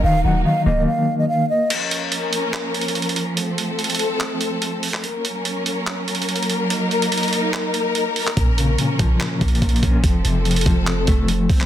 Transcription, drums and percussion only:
1.70 closed hi-hat medium
1.70 crash medium
1.91 closed hi-hat medium
2.12 closed hi-hat medium
2.33 closed hi-hat medium
2.53 clap loud
2.53 closed hi-hat medium
2.74 closed hi-hat medium
2.81 closed hi-hat medium
2.88 closed hi-hat medium
2.95 closed hi-hat medium
3.02 closed hi-hat medium
3.09 closed hi-hat medium
3.16 closed hi-hat medium
3.37 closed hi-hat medium
3.58 closed hi-hat medium
3.79 closed hi-hat soft
3.84 closed hi-hat medium
3.90 closed hi-hat medium
3.95 closed hi-hat medium
3.99 closed hi-hat medium
4.20 clap loud
4.20 closed hi-hat medium
4.41 closed hi-hat medium
4.62 closed hi-hat medium
4.83 open hi-hat medium
4.94 clap medium
5.04 closed hi-hat medium
5.25 closed hi-hat medium
5.45 closed hi-hat medium
5.66 closed hi-hat medium
5.87 clap loud
5.87 closed hi-hat medium
6.08 closed hi-hat medium
6.15 closed hi-hat medium
6.22 closed hi-hat medium
6.29 closed hi-hat medium
6.36 closed hi-hat medium
6.43 closed hi-hat medium
6.50 closed hi-hat medium
6.70 closed hi-hat medium
6.91 closed hi-hat soft
7.02 closed hi-hat medium
7.12 closed hi-hat medium
7.17 closed hi-hat medium
7.23 closed hi-hat medium
7.28 closed hi-hat soft
7.33 closed hi-hat medium
7.53 clap loud
7.53 closed hi-hat medium
7.74 closed hi-hat medium
7.95 closed hi-hat medium
8.16 closed hi-hat medium
8.16 open hi-hat medium
8.27 clap medium
8.27 closed hi-hat medium
8.37 kick loud
8.37 closed hi-hat medium
8.58 closed hi-hat medium
8.78 closed hi-hat medium
8.99 kick medium
8.99 closed hi-hat medium
9.20 clap loud
9.20 closed hi-hat medium
9.41 kick loud
9.41 closed hi-hat medium
9.48 closed hi-hat medium
9.55 closed hi-hat medium
9.62 kick medium
9.62 closed hi-hat medium
9.69 closed hi-hat medium
9.76 closed hi-hat medium
9.83 kick medium
9.83 closed hi-hat medium
10.04 kick loud
10.04 closed hi-hat medium
10.25 closed hi-hat medium
10.45 closed hi-hat soft
10.51 closed hi-hat medium
10.56 closed hi-hat medium
10.61 closed hi-hat medium
10.66 kick medium
10.66 closed hi-hat medium
10.87 clap loud
10.87 closed hi-hat medium
11.07 kick loud
11.07 closed hi-hat medium
11.28 closed hi-hat medium
11.50 kick medium
11.50 open hi-hat medium
11.61 clap medium

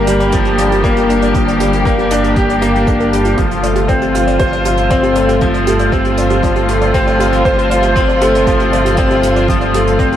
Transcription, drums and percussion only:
0.07 closed hi-hat medium
0.20 closed hi-hat soft
0.32 kick loud
0.32 closed hi-hat medium
0.45 closed hi-hat soft
0.58 closed hi-hat medium
0.72 closed hi-hat medium
0.84 kick loud
0.84 closed hi-hat medium
0.96 closed hi-hat soft
1.10 closed hi-hat medium
1.22 closed hi-hat soft
1.35 kick loud
1.35 closed hi-hat medium
1.48 closed hi-hat soft
1.60 closed hi-hat medium
1.73 closed hi-hat medium
1.85 kick loud
1.85 closed hi-hat medium
1.99 closed hi-hat soft
2.11 closed hi-hat medium
2.24 closed hi-hat medium
2.36 kick loud
2.36 closed hi-hat medium
2.50 closed hi-hat soft
2.62 closed hi-hat medium
2.75 closed hi-hat medium
2.87 kick loud
2.87 closed hi-hat medium
3.00 closed hi-hat soft
3.13 closed hi-hat medium
3.25 closed hi-hat medium
3.38 kick loud
3.38 closed hi-hat medium
3.51 closed hi-hat soft
3.63 closed hi-hat medium
3.75 closed hi-hat soft
3.89 kick loud
3.89 closed hi-hat medium
4.01 closed hi-hat soft
4.15 closed hi-hat medium
4.27 closed hi-hat medium
4.39 kick loud
4.39 closed hi-hat medium
4.53 closed hi-hat soft
4.65 closed hi-hat medium
4.77 closed hi-hat medium
4.90 kick loud
4.90 closed hi-hat medium
5.03 closed hi-hat soft
5.15 closed hi-hat medium
5.29 closed hi-hat soft
5.41 kick loud
5.41 closed hi-hat medium
5.54 closed hi-hat soft
5.67 closed hi-hat medium
5.79 closed hi-hat soft
5.92 kick loud
5.92 closed hi-hat medium
6.05 closed hi-hat soft
6.17 closed hi-hat medium
6.30 closed hi-hat soft
6.43 kick loud
6.43 closed hi-hat medium
6.56 closed hi-hat soft
6.68 closed hi-hat medium
6.81 closed hi-hat medium
6.94 kick loud
6.94 closed hi-hat medium
7.07 closed hi-hat soft
7.20 closed hi-hat medium
7.33 closed hi-hat medium
7.45 kick loud
7.45 closed hi-hat soft
7.59 closed hi-hat soft
7.71 closed hi-hat medium
7.83 closed hi-hat soft
7.96 kick loud
7.96 closed hi-hat medium
8.09 closed hi-hat soft
8.21 closed hi-hat medium
8.35 closed hi-hat soft
8.47 kick loud
8.47 closed hi-hat medium
8.60 closed hi-hat soft
8.73 closed hi-hat medium
8.86 closed hi-hat medium
8.97 kick loud
8.97 closed hi-hat medium
9.10 closed hi-hat soft
9.23 closed hi-hat medium
9.36 closed hi-hat soft
9.48 kick loud
9.48 closed hi-hat medium
9.61 closed hi-hat soft
9.74 closed hi-hat medium
9.87 closed hi-hat soft
9.99 kick loud
9.99 closed hi-hat medium
10.12 closed hi-hat soft

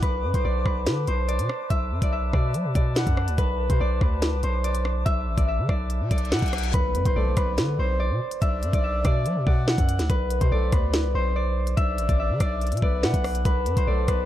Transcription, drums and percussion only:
0.03 kick loud
0.03 closed hi-hat medium
0.34 kick loud
0.34 closed hi-hat medium
0.66 kick medium
0.66 cross-stick medium
0.86 snare loud
0.86 closed hi-hat medium
1.07 closed hi-hat medium
1.29 closed hi-hat medium
1.39 closed hi-hat medium
1.49 cross-stick loud
1.70 kick loud
1.70 closed hi-hat medium
2.02 kick loud
2.02 closed hi-hat medium
2.33 kick loud
2.33 cross-stick medium
2.54 closed hi-hat medium
2.75 kick medium
2.75 closed hi-hat medium
2.96 snare loud
2.96 closed hi-hat medium
3.07 kick loud
3.07 closed hi-hat medium
3.17 cross-stick loud
3.28 closed hi-hat medium
3.38 kick loud
3.38 closed hi-hat medium
3.70 kick loud
3.70 closed hi-hat medium
4.01 kick loud
4.01 cross-stick medium
4.22 snare loud
4.22 closed hi-hat medium
4.43 closed hi-hat medium
4.64 closed hi-hat medium
4.75 closed hi-hat medium
4.85 cross-stick loud
5.06 kick loud
5.06 closed hi-hat medium
5.38 kick loud
5.38 closed hi-hat medium
5.69 kick loud
5.69 cross-stick medium
5.90 closed hi-hat medium
6.11 kick loud
6.11 closed hi-hat medium
6.18 closed hi-hat medium
6.25 closed hi-hat medium
6.32 snare loud
6.32 closed hi-hat medium
6.39 kick loud
6.39 closed hi-hat medium
6.42 closed hi-hat medium
6.46 closed hi-hat soft
6.48 closed hi-hat medium
6.53 cross-stick loud
6.53 closed hi-hat medium
6.58 closed hi-hat medium
6.63 closed hi-hat medium
6.74 kick loud
6.74 closed hi-hat medium
6.95 closed hi-hat medium
7.05 kick loud
7.05 closed hi-hat medium
7.37 kick loud
7.37 cross-stick loud
7.37 closed hi-hat medium
7.58 snare loud
7.58 closed hi-hat medium
8.31 closed hi-hat medium
8.42 kick loud
8.42 closed hi-hat medium
8.63 closed hi-hat medium
8.73 kick loud
8.73 closed hi-hat medium
9.05 kick loud
9.05 cross-stick medium
9.05 closed hi-hat medium
9.26 closed hi-hat medium
9.47 kick loud
9.68 snare loud
9.78 kick loud
9.78 closed hi-hat medium
9.89 closed hi-hat medium
9.99 snare medium
9.99 closed hi-hat medium
10.10 kick loud
10.10 closed hi-hat medium
10.30 closed hi-hat medium
10.41 kick loud
10.41 closed hi-hat medium
10.72 kick loud
10.72 cross-stick medium
10.72 closed hi-hat medium
10.93 snare loud
10.93 closed hi-hat medium
11.67 closed hi-hat medium
11.77 kick loud
11.77 closed hi-hat medium
11.98 closed hi-hat medium
12.09 kick loud
12.09 closed hi-hat medium
12.40 kick loud
12.40 cross-stick medium
12.40 closed hi-hat medium
12.61 closed hi-hat soft
12.67 closed hi-hat medium
12.72 closed hi-hat medium
12.77 closed hi-hat medium
12.82 kick loud
13.03 snare loud
13.14 kick loud
13.14 closed hi-hat medium
13.24 cross-stick loud
13.24 open hi-hat medium
13.35 closed hi-hat medium
13.45 kick loud
13.45 closed hi-hat medium
13.66 closed hi-hat medium
13.77 kick loud
13.77 closed hi-hat medium
14.08 kick loud
14.08 cross-stick medium
14.08 closed hi-hat medium

